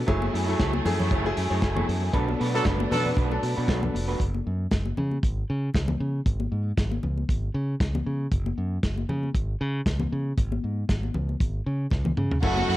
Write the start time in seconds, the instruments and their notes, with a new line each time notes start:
0.07 fingered electric bass F#1, grand piano F#3 A3 E4 G#4, string section F#3 A3 E4 G#4, clean electric guitar A3 E4 G#4 C#5, kick, closed hi-hat, muted conga
0.22 muted conga, high conga
0.33 fingered electric bass F#2, clean electric guitar A3 E4 G#4 E5, open hi-hat
0.47 grand piano F#3 A3 E4 A4, clean electric guitar A3 E4 G#4 C#5
0.59 fingered electric bass C#2, clean electric guitar A3 E4 G#4 C#5, kick, snare, closed hi-hat
0.73 muted clean electric guitar stroke, muted conga, high conga
0.85 fingered electric bass F#2, grand piano F#3 A3 E4 G#4, muted clean electric guitar stroke, open hi-hat, low conga
1.00 clean electric guitar A3 E4 G#4 C#5, high conga, low conga
1.11 fingered electric bass F#1, clean electric guitar A3 E4 G#4 C#5, kick, closed hi-hat, muted conga
1.24 grand piano F#3 A3 E4 G#4, muted clean electric guitar stroke, muted conga
1.36 fingered electric bass F#2, muted clean electric guitar stroke, open hi-hat
1.50 fingered electric bass F#2, clean electric guitar A3 E4 G#4 C#5
1.61 fingered electric bass F#1, grand piano F#3 A3 E4 G#4, muted clean electric guitar stroke, kick, snare, closed hi-hat
1.76 clean electric guitar A3 E4 G#4 C#5, muted conga, high conga, low conga
1.87 fingered electric bass F#2, muted clean electric guitar stroke, open hi-hat
2.02 muted clean electric guitar stroke
2.13 fingered electric bass B1, grand piano F#3 B3 D4 A4, clean electric guitar A3 D4 F#4 B4, string section A3 B3 D4, kick, closed hi-hat, muted conga
2.28 high conga
2.39 fingered electric bass B2, clean electric guitar A3 D4 F#4 B4, open hi-hat
2.54 grand piano F#3 B3 D4 A4, horn section F#3 D4 A4, clean electric guitar A3 D4 F#4 B4
2.65 fingered electric bass F#1, clean electric guitar A3 D4 F#4 B4, kick, snare, closed hi-hat, muted conga
2.80 muted clean electric guitar stroke, muted conga, high conga
2.90 fingered electric bass B2, grand piano F#3 B3 D4 B4, horn section F#3 D4 A4, muted clean electric guitar stroke, open hi-hat, low conga
3.05 clean electric guitar A3 D4 F#4 B4, high conga, low conga
3.16 fingered electric bass B1, clean electric guitar A3 D4 F#4 B4, kick, closed hi-hat, muted conga
3.30 grand piano F#3 B3 D4 A4, muted clean electric guitar stroke, muted conga
3.43 fingered electric bass B2, muted clean electric guitar stroke, open hi-hat
3.57 fingered electric bass B2, clean electric guitar A3 D4 F#4 B4
3.66 fingered electric bass B1, grand piano F#3 B3 D4 A4, clean electric guitar A3 D4 F#4 B4, kick, snare, closed hi-hat, muted conga
3.82 muted clean electric guitar stroke, muted conga, high conga, low conga
3.94 fingered electric bass F1, muted clean electric guitar stroke, open hi-hat
4.08 clean electric guitar A3 D4 F#4 B4
4.20 fingered electric bass F#1, kick, closed hi-hat
4.34 high conga
4.47 fingered electric bass F#2
4.71 fingered electric bass F#1, kick, snare, closed hi-hat, muted conga
4.85 high conga
4.97 fingered electric bass C#3, low conga
5.11 high conga
5.23 fingered electric bass G#1, kick, closed hi-hat
5.50 fingered electric bass C#3
5.74 fingered electric bass C#2, kick, snare, closed hi-hat, muted conga
5.88 muted conga, high conga, low conga
6.00 fingered electric bass C#3
6.26 fingered electric bass G#1, kick, closed hi-hat
6.40 muted conga, high conga
6.52 fingered electric bass G#2
6.77 fingered electric bass G#1, kick, snare, closed hi-hat, muted conga
6.92 muted conga, high conga
7.03 fingered electric bass C#2, low conga
7.18 high conga
7.29 fingered electric bass G#1, kick, closed hi-hat
7.54 fingered electric bass C#3
7.80 fingered electric bass C#2, kick, snare, closed hi-hat
7.95 muted conga, high conga, low conga
8.06 fingered electric bass C#3
8.32 fingered electric bass F#1, kick, closed hi-hat
8.46 muted conga, high conga
8.58 fingered electric bass F#2
8.83 fingered electric bass F#1, kick, snare, closed hi-hat, muted conga
8.98 high conga
9.09 fingered electric bass C#3, low conga
9.23 high conga
9.35 fingered electric bass G#1, kick, closed hi-hat, muted conga
9.61 fingered electric bass C#3
9.86 fingered electric bass C#2, kick, snare, closed hi-hat
10.00 muted conga, high conga, low conga
10.12 fingered electric bass C#3
10.38 fingered electric bass G#1, kick, closed hi-hat, muted conga
10.52 high conga
10.64 fingered electric bass G#2
10.89 fingered electric bass G#1, kick, snare, closed hi-hat, muted conga
11.03 high conga
11.14 fingered electric bass C#2, low conga
11.29 high conga
11.40 fingered electric bass G#1, kick, closed hi-hat
11.66 fingered electric bass C#3
11.90 fingered electric bass C#2, kick, snare, muted conga
12.05 high tom, high conga, low conga
12.17 fingered electric bass C#3, mid tom
12.31 floor tom
12.42 fingered electric bass F#1, grand piano F#3 A3 C#4 E4 A4, string section F#3 C#4 E4 A4, clean electric guitar A3 E4 F#4 C#5, violin section F#4 F#5, kick, crash, muted conga
12.57 high conga
12.68 fingered electric bass F#2, clean electric guitar A3 E4 F#4 E5, open hi-hat